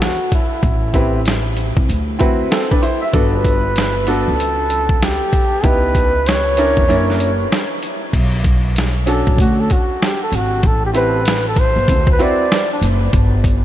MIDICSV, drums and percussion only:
0, 0, Header, 1, 2, 480
1, 0, Start_track
1, 0, Key_signature, 2, "minor"
1, 0, Tempo, 625000
1, 488, Time_signature, 4, 2, 24, 8
1, 10482, End_track
2, 0, Start_track
2, 0, Title_t, "Drums"
2, 13, Note_on_c, 9, 42, 77
2, 15, Note_on_c, 9, 38, 95
2, 90, Note_off_c, 9, 42, 0
2, 92, Note_off_c, 9, 38, 0
2, 245, Note_on_c, 9, 36, 84
2, 247, Note_on_c, 9, 42, 68
2, 322, Note_off_c, 9, 36, 0
2, 324, Note_off_c, 9, 42, 0
2, 483, Note_on_c, 9, 36, 109
2, 483, Note_on_c, 9, 42, 60
2, 560, Note_off_c, 9, 36, 0
2, 560, Note_off_c, 9, 42, 0
2, 722, Note_on_c, 9, 36, 82
2, 726, Note_on_c, 9, 42, 77
2, 798, Note_off_c, 9, 36, 0
2, 802, Note_off_c, 9, 42, 0
2, 964, Note_on_c, 9, 42, 82
2, 982, Note_on_c, 9, 38, 101
2, 1041, Note_off_c, 9, 42, 0
2, 1058, Note_off_c, 9, 38, 0
2, 1203, Note_on_c, 9, 42, 68
2, 1280, Note_off_c, 9, 42, 0
2, 1357, Note_on_c, 9, 36, 84
2, 1434, Note_off_c, 9, 36, 0
2, 1456, Note_on_c, 9, 42, 84
2, 1533, Note_off_c, 9, 42, 0
2, 1685, Note_on_c, 9, 42, 73
2, 1694, Note_on_c, 9, 36, 76
2, 1762, Note_off_c, 9, 42, 0
2, 1771, Note_off_c, 9, 36, 0
2, 1933, Note_on_c, 9, 42, 79
2, 1935, Note_on_c, 9, 38, 94
2, 2010, Note_off_c, 9, 42, 0
2, 2012, Note_off_c, 9, 38, 0
2, 2085, Note_on_c, 9, 36, 86
2, 2162, Note_off_c, 9, 36, 0
2, 2172, Note_on_c, 9, 42, 74
2, 2248, Note_off_c, 9, 42, 0
2, 2408, Note_on_c, 9, 36, 101
2, 2408, Note_on_c, 9, 42, 65
2, 2485, Note_off_c, 9, 36, 0
2, 2485, Note_off_c, 9, 42, 0
2, 2646, Note_on_c, 9, 36, 88
2, 2649, Note_on_c, 9, 42, 85
2, 2723, Note_off_c, 9, 36, 0
2, 2726, Note_off_c, 9, 42, 0
2, 2886, Note_on_c, 9, 42, 83
2, 2904, Note_on_c, 9, 38, 106
2, 2963, Note_off_c, 9, 42, 0
2, 2980, Note_off_c, 9, 38, 0
2, 3124, Note_on_c, 9, 42, 77
2, 3201, Note_off_c, 9, 42, 0
2, 3379, Note_on_c, 9, 42, 84
2, 3456, Note_off_c, 9, 42, 0
2, 3609, Note_on_c, 9, 42, 69
2, 3686, Note_off_c, 9, 42, 0
2, 3757, Note_on_c, 9, 36, 90
2, 3834, Note_off_c, 9, 36, 0
2, 3858, Note_on_c, 9, 42, 69
2, 3860, Note_on_c, 9, 38, 101
2, 3935, Note_off_c, 9, 42, 0
2, 3936, Note_off_c, 9, 38, 0
2, 4091, Note_on_c, 9, 36, 87
2, 4093, Note_on_c, 9, 42, 75
2, 4168, Note_off_c, 9, 36, 0
2, 4170, Note_off_c, 9, 42, 0
2, 4329, Note_on_c, 9, 36, 105
2, 4330, Note_on_c, 9, 42, 67
2, 4406, Note_off_c, 9, 36, 0
2, 4407, Note_off_c, 9, 42, 0
2, 4567, Note_on_c, 9, 36, 91
2, 4573, Note_on_c, 9, 42, 77
2, 4644, Note_off_c, 9, 36, 0
2, 4650, Note_off_c, 9, 42, 0
2, 4811, Note_on_c, 9, 42, 86
2, 4828, Note_on_c, 9, 38, 111
2, 4888, Note_off_c, 9, 42, 0
2, 4905, Note_off_c, 9, 38, 0
2, 5047, Note_on_c, 9, 42, 74
2, 5123, Note_off_c, 9, 42, 0
2, 5200, Note_on_c, 9, 36, 80
2, 5277, Note_off_c, 9, 36, 0
2, 5299, Note_on_c, 9, 42, 82
2, 5376, Note_off_c, 9, 42, 0
2, 5454, Note_on_c, 9, 38, 34
2, 5530, Note_off_c, 9, 38, 0
2, 5531, Note_on_c, 9, 42, 68
2, 5608, Note_off_c, 9, 42, 0
2, 5777, Note_on_c, 9, 42, 76
2, 5779, Note_on_c, 9, 38, 97
2, 5854, Note_off_c, 9, 42, 0
2, 5856, Note_off_c, 9, 38, 0
2, 6011, Note_on_c, 9, 42, 74
2, 6087, Note_off_c, 9, 42, 0
2, 6247, Note_on_c, 9, 36, 110
2, 6247, Note_on_c, 9, 49, 88
2, 6248, Note_on_c, 9, 42, 72
2, 6324, Note_off_c, 9, 36, 0
2, 6324, Note_off_c, 9, 49, 0
2, 6325, Note_off_c, 9, 42, 0
2, 6485, Note_on_c, 9, 36, 85
2, 6489, Note_on_c, 9, 42, 79
2, 6562, Note_off_c, 9, 36, 0
2, 6565, Note_off_c, 9, 42, 0
2, 6729, Note_on_c, 9, 42, 82
2, 6746, Note_on_c, 9, 38, 107
2, 6805, Note_off_c, 9, 42, 0
2, 6823, Note_off_c, 9, 38, 0
2, 6966, Note_on_c, 9, 42, 76
2, 7043, Note_off_c, 9, 42, 0
2, 7120, Note_on_c, 9, 36, 90
2, 7197, Note_off_c, 9, 36, 0
2, 7207, Note_on_c, 9, 36, 74
2, 7220, Note_on_c, 9, 42, 91
2, 7284, Note_off_c, 9, 36, 0
2, 7297, Note_off_c, 9, 42, 0
2, 7449, Note_on_c, 9, 42, 72
2, 7456, Note_on_c, 9, 36, 75
2, 7526, Note_off_c, 9, 42, 0
2, 7532, Note_off_c, 9, 36, 0
2, 7698, Note_on_c, 9, 42, 72
2, 7700, Note_on_c, 9, 38, 100
2, 7775, Note_off_c, 9, 42, 0
2, 7776, Note_off_c, 9, 38, 0
2, 7930, Note_on_c, 9, 42, 73
2, 8007, Note_off_c, 9, 42, 0
2, 8164, Note_on_c, 9, 42, 69
2, 8166, Note_on_c, 9, 36, 113
2, 8241, Note_off_c, 9, 42, 0
2, 8243, Note_off_c, 9, 36, 0
2, 8406, Note_on_c, 9, 42, 76
2, 8483, Note_off_c, 9, 42, 0
2, 8644, Note_on_c, 9, 42, 87
2, 8662, Note_on_c, 9, 38, 114
2, 8721, Note_off_c, 9, 42, 0
2, 8738, Note_off_c, 9, 38, 0
2, 8881, Note_on_c, 9, 42, 74
2, 8882, Note_on_c, 9, 36, 86
2, 8958, Note_off_c, 9, 36, 0
2, 8958, Note_off_c, 9, 42, 0
2, 9124, Note_on_c, 9, 36, 85
2, 9133, Note_on_c, 9, 42, 94
2, 9201, Note_off_c, 9, 36, 0
2, 9210, Note_off_c, 9, 42, 0
2, 9269, Note_on_c, 9, 36, 87
2, 9346, Note_off_c, 9, 36, 0
2, 9366, Note_on_c, 9, 42, 72
2, 9442, Note_off_c, 9, 42, 0
2, 9612, Note_on_c, 9, 42, 78
2, 9614, Note_on_c, 9, 38, 102
2, 9689, Note_off_c, 9, 42, 0
2, 9691, Note_off_c, 9, 38, 0
2, 9849, Note_on_c, 9, 42, 81
2, 9926, Note_off_c, 9, 42, 0
2, 10085, Note_on_c, 9, 36, 104
2, 10087, Note_on_c, 9, 42, 73
2, 10162, Note_off_c, 9, 36, 0
2, 10164, Note_off_c, 9, 42, 0
2, 10323, Note_on_c, 9, 36, 89
2, 10327, Note_on_c, 9, 42, 85
2, 10399, Note_off_c, 9, 36, 0
2, 10404, Note_off_c, 9, 42, 0
2, 10482, End_track
0, 0, End_of_file